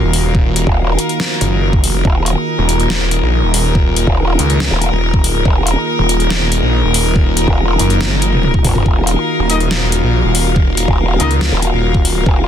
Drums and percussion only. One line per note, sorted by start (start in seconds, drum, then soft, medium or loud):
0.13 open hi-hat medium
0.35 kick loud
0.56 closed hi-hat medium
0.67 kick medium
0.99 closed hi-hat medium
1.09 closed hi-hat soft
1.20 snare loud
1.41 closed hi-hat medium
1.73 kick loud
1.84 open hi-hat medium
2.05 kick loud
2.26 closed hi-hat medium
2.69 closed hi-hat medium
2.80 closed hi-hat soft
2.90 snare loud
3.11 closed hi-hat medium
3.54 open hi-hat medium
3.75 kick loud
3.96 closed hi-hat medium
4.07 kick medium
4.39 closed hi-hat medium
4.50 closed hi-hat soft
4.60 snare loud
4.82 closed hi-hat medium
5.14 kick loud
5.24 open hi-hat medium
5.45 kick loud
5.67 closed hi-hat medium
6.09 closed hi-hat medium
6.20 closed hi-hat soft
6.30 snare loud
6.52 closed hi-hat medium
6.94 open hi-hat loud
7.16 kick loud
7.37 closed hi-hat medium
7.48 kick medium
7.79 closed hi-hat medium
7.90 closed hi-hat soft
8.01 snare loud
8.01 high tom medium
8.12 high tom medium
8.22 closed hi-hat medium
8.33 mid tom medium
8.43 mid tom medium
8.54 kick loud
8.64 kick medium
8.64 mid tom loud
8.64 open hi-hat loud
8.75 mid tom medium
8.86 kick loud
9.07 closed hi-hat medium
9.50 closed hi-hat medium
9.60 closed hi-hat soft
9.71 snare loud
9.92 closed hi-hat medium
10.35 open hi-hat loud
10.56 kick loud
10.77 closed hi-hat medium
10.88 kick medium
11.20 closed hi-hat medium
11.31 closed hi-hat soft
11.41 snare loud
11.62 closed hi-hat medium
11.94 kick loud
12.05 open hi-hat loud
12.26 kick loud